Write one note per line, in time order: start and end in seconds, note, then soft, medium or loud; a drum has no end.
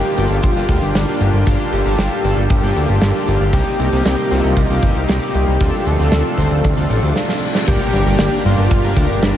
0.00 3.50 D3 medium
0.00 3.50 G3 medium
0.00 0.14 A#3 loud
0.00 3.50 A#3 medium
0.00 0.14 D4 medium
0.00 0.14 F4 medium
0.00 3.50 F4 medium
0.00 0.14 G4 loud
0.00 0.19 G4 loud
0.00 1.45 G4 medium
0.17 0.28 G1 loud
0.17 0.35 A#3 medium
0.17 0.35 D4 medium
0.17 0.35 F4 medium
0.17 0.85 F4 loud
0.17 0.35 A4 loud
0.17 closed hi-hat medium
0.30 0.41 G1 medium
0.42 0.54 G1 loud
0.42 kick loud
0.42 closed hi-hat medium
0.56 0.67 G1 medium
0.56 1.05 A#3 medium
0.56 1.05 D4 medium
0.56 1.05 F4 medium
0.56 1.05 G4 loud
0.69 0.79 D2 medium
0.69 kick loud
0.69 closed hi-hat medium
0.82 0.92 G1 medium
0.95 1.05 G1 loud
0.95 1.62 D4 loud
0.95 snare loud
0.95 closed hi-hat medium
1.08 1.44 A#3 medium
1.08 1.44 D4 medium
1.08 1.44 F4 medium
1.08 1.44 G4 loud
1.20 1.31 G1 medium
1.20 closed hi-hat medium
1.34 1.44 G1 medium
1.47 1.57 G1 loud
1.47 1.82 A#3 medium
1.47 1.82 D4 medium
1.47 1.82 F4 medium
1.47 1.82 G4 loud
1.47 3.52 A4 medium
1.47 kick loud
1.47 closed hi-hat medium
1.72 1.83 G1 medium
1.72 3.43 G4 loud
1.72 closed hi-hat medium
1.85 1.96 G1 medium
1.85 2.21 A#3 loud
1.85 2.21 D4 medium
1.85 2.21 F4 medium
1.85 2.21 G4 loud
1.98 2.09 G1 medium
1.98 snare loud
1.98 closed hi-hat medium
2.24 2.35 G1 medium
2.24 2.42 A#3 medium
2.24 2.42 D4 medium
2.24 2.42 F4 medium
2.24 2.42 A4 loud
2.24 closed hi-hat medium
2.37 2.47 G1 medium
2.50 2.60 G1 loud
2.50 kick loud
2.50 closed hi-hat medium
2.63 2.73 G1 medium
2.63 3.12 A#3 medium
2.63 3.12 D4 medium
2.63 3.12 F4 medium
2.63 3.12 G4 loud
2.76 2.86 D2 medium
2.76 closed hi-hat medium
2.89 2.99 G1 medium
3.02 3.12 G1 loud
3.02 snare loud
3.02 closed hi-hat medium
3.15 3.51 A#3 medium
3.15 3.51 D4 medium
3.15 3.51 F4 medium
3.15 3.51 G4 loud
3.27 3.38 G1 medium
3.27 closed hi-hat medium
3.41 3.51 G1 medium
3.53 3.64 C2 loud
3.53 5.59 C3 medium
3.53 5.59 G3 medium
3.53 3.89 A#3 medium
3.53 5.59 A#3 medium
3.53 3.89 C4 medium
3.53 5.59 D#4 medium
3.53 3.89 D#4 medium
3.53 4.33 G4 loud
3.53 3.89 G4 loud
3.53 5.59 G4 medium
3.53 kick loud
3.53 closed hi-hat medium
3.79 3.90 C2 medium
3.79 closed hi-hat medium
3.92 4.03 C2 medium
3.92 4.28 A#3 loud
3.92 4.28 C4 medium
3.92 4.28 D#4 medium
3.92 4.28 G4 loud
4.05 4.16 C2 loud
4.05 snare loud
4.05 closed hi-hat medium
4.31 4.42 C2 loud
4.31 4.49 A#3 medium
4.31 4.49 C4 medium
4.31 4.49 D#4 medium
4.31 4.98 F4 medium
4.31 4.49 A4 loud
4.31 closed hi-hat medium
4.44 4.54 C2 medium
4.57 4.67 C2 loud
4.57 kick loud
4.57 closed hi-hat medium
4.70 4.80 C2 medium
4.70 5.19 A#3 medium
4.70 5.19 C4 medium
4.70 5.19 D#4 medium
4.70 5.19 G4 loud
4.83 4.93 G1 medium
4.83 kick loud
4.83 closed hi-hat medium
4.96 5.06 C2 medium
5.08 5.19 C2 loud
5.08 5.88 G4 loud
5.08 snare loud
5.08 closed hi-hat medium
5.22 5.58 A#3 medium
5.22 5.57 C4 medium
5.22 5.58 D#4 medium
5.22 5.58 G4 loud
5.34 5.45 C2 medium
5.34 closed hi-hat medium
5.47 5.58 C2 medium
5.60 5.71 D2 loud
5.60 7.65 C3 medium
5.60 7.65 F3 medium
5.60 7.65 A3 medium
5.60 5.96 C4 medium
5.60 7.65 D4 medium
5.60 5.96 D4 medium
5.60 7.65 F4 medium
5.60 5.96 F4 medium
5.60 5.96 A4 loud
5.60 kick loud
5.60 closed hi-hat loud
5.86 5.97 D2 medium
5.86 7.16 A4 loud
5.86 closed hi-hat medium
5.99 6.10 D2 medium
5.99 6.35 C4 medium
5.99 6.35 D4 medium
5.99 6.35 F4 medium
5.99 6.35 A4 loud
6.12 6.23 D2 loud
6.12 snare loud
6.12 closed hi-hat loud
6.38 6.48 D2 medium
6.38 6.56 C4 medium
6.38 6.56 D4 medium
6.38 6.56 F4 medium
6.38 6.56 C5 loud
6.38 kick medium
6.38 closed hi-hat medium
6.51 6.61 D2 medium
6.64 6.75 D2 loud
6.64 kick loud
6.64 closed hi-hat medium
6.64 reverse cymbal medium
6.77 6.87 D2 medium
6.77 7.16 C4 medium
6.77 7.16 D4 medium
6.77 7.16 F4 medium
6.77 7.16 A4 loud
6.90 7.00 A1 medium
6.90 closed hi-hat medium
7.03 7.13 D2 medium
7.16 snare medium
7.29 snare medium
7.55 snare medium
7.67 7.78 G1 loud
7.67 9.37 A#2 medium
7.67 9.37 D3 medium
7.67 7.74 G3 medium
7.67 9.37 G3 medium
7.67 8.03 A#3 medium
7.67 8.03 D4 medium
7.67 9.37 D4 medium
7.67 8.35 G4 loud
7.67 9.37 G4 medium
7.67 8.35 G4 loud
7.67 8.03 G4 medium
7.67 8.03 A#4 loud
7.67 kick loud
7.67 closed hi-hat loud
7.67 crash loud
7.67 impact medium
7.80 7.93 A#3 medium
7.93 8.04 G1 medium
7.93 8.05 D4 medium
7.93 closed hi-hat medium
8.06 8.17 G1 medium
8.06 8.19 G3 medium
8.06 8.42 A#3 loud
8.06 8.42 D4 medium
8.06 8.42 G4 medium
8.06 8.42 A#4 loud
8.19 8.30 G1 loud
8.19 8.31 A#3 medium
8.19 snare loud
8.19 closed hi-hat loud
8.32 8.44 D4 medium
8.45 8.55 G1 loud
8.45 8.52 G3 medium
8.45 8.63 A#3 medium
8.45 8.63 D4 medium
8.45 9.12 F4 loud
8.45 8.63 G4 medium
8.45 8.63 C5 loud
8.45 open hi-hat medium
8.58 8.68 G1 medium
8.58 8.70 A#3 medium
8.71 8.81 G1 loud
8.71 8.82 D4 medium
8.71 kick loud
8.71 closed hi-hat loud
8.84 8.94 G1 medium
8.84 8.96 G3 medium
8.84 9.32 A#3 medium
8.84 9.33 D4 medium
8.84 9.32 G4 medium
8.84 9.32 A#4 loud
8.97 9.07 D2 medium
8.97 9.09 A#3 medium
8.97 kick loud
8.97 closed hi-hat medium
9.10 9.20 G1 medium
9.10 9.22 D4 medium
9.22 9.33 G1 loud
9.22 9.29 G3 medium
9.22 9.37 D4 loud
9.22 snare loud
9.22 closed hi-hat loud